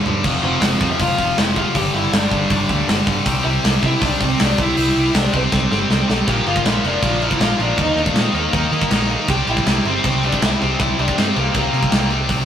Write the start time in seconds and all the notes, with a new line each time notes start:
0.06 G2 D3 G3, floor tom
0.24 F1 F2 C3 F3, kick, crash
0.43 F1 F2 C3 F3 C4 C5
0.61 F1 F2 C3 F3, snare, open hi-hat
0.81 F2 C3 F3, kick
0.91 E5
0.99 F1 F2 C3 F3 F4 F5, kick, open hi-hat
1.18 F1 F2 C3 F3, kick
1.37 F1 F2 C3 F3 E4 E5, snare, open hi-hat
1.56 F2 C3 F3 F4 F5, kick
1.74 G1 G2 D3 G3 G4 G5, kick, open hi-hat
1.93 G1 G2 D3 G3 E4 E5
2.12 G1 G2 D3 G3 D4 D5, snare, open hi-hat
2.30 G1 G2 D3 G3, kick
2.50 G1 G2 D3 G3, kick, open hi-hat
2.69 D2 G2 D3 G3, kick
2.87 G1 G2 D3 G3, snare, open hi-hat
3.07 G2 D3 G3, kick
3.26 C2 C3 G3 C4, kick, open hi-hat
3.44 C2 C3 G3 C4 E4 E5
3.63 C2 C3 G3 C4, snare, open hi-hat
3.82 C3 G3 C4 E4 E5, kick
4.01 C2 C3 G3 C4 D4, kick, open hi-hat
4.05 D5
4.20 C2 C3 G3 C4, kick
4.25 C5
4.39 C2 C3 G3 C4 D4, snare, open hi-hat
4.44 D5
4.58 C2 C3 G3 C4 E4 E5, kick
4.76 C2 C3 G3 C4, open hi-hat
4.96 C2 C3 G3 C4
5.14 C2 C3 G3 C4 D4 D5, snare, open hi-hat
5.33 C2 C3 G3 C4 C5, kick
5.52 C2 C3 G3 C4, kick, snare
5.71 G1 C3 G3 C4, snare
5.90 C2 C3 G3 C4, snare
6.08 B1 C3 G3 C4, snare
6.28 A#1 A#2 F3 A#3 G4 G5, kick, crash
6.46 G1 A#2 F3 A#3 F4 F5, crash
6.56 kick
6.64 A#1 A#2 F3 A#3 E4 E5, snare, crash
6.84 F1 A#2 F3 A#3 D4 D5, crash
7.02 A#1 A#2 F3 A#3, kick, crash
7.21 A#2 F3 A#3 E4 E5, crash
7.31 kick
7.40 A#1 A#2 F3 A#3 F4 F5, snare, crash
7.59 A#1 A#2 F3 A#3 D4 D5, crash
7.77 D#2 D#3 A#3 D#4, kick, crash
7.82 D#5
7.95 D#2 D#3 A#3 D#4, crash
8.00 D4 D5
8.06 kick
8.14 A#2 D#3 A#3 D#4, snare, crash
8.19 C4 C5
8.33 D#2 D#3 A#3 D#4, crash
8.38 A#3 A#4
8.53 D#2 D#3 A#3 D#4 A#4, kick, crash
8.71 D#3 A#3 D#4, crash
8.81 kick
8.90 A#1 D#3 A#3 D#4, snare, crash
9.09 D#3 A#3 D#4, crash
9.28 C2 C3 G3 C4 G4, kick, crash
9.33 G5
9.47 A#1 C3 G3 C4 E4 E5, crash
9.57 kick
9.66 C2 C3 G3 C4, snare, crash
9.85 G1 C3 G3 C4, crash
9.89 C5
10.04 C2 C3 G3 C4 C5, kick, crash
10.23 C3 G3 C4 D4 D5, crash
10.32 kick
10.42 C2 C3 G3 C4 E4 E5, snare, crash
10.60 C2 C3 G3 C4 C5, crash
10.79 C2 C3 G3 C4 E4 E5, kick, crash
10.98 C2 C3 G3 C4 D4 D5, crash
11.08 kick
11.17 G2 C3 G3 C4 C5, snare, crash
11.35 C2 C3 G3 A#3 C4, crash
11.39 A#4
11.53 C2 C3 G3 A#3 C4 A#4, kick, crash
11.72 C3 G3 C4, crash
11.83 kick
11.91 C2 C3 G3 C4, snare, crash
12.10 C3 G3 C4, crash
12.29 C2 C3 G3 C4, kick, open hi-hat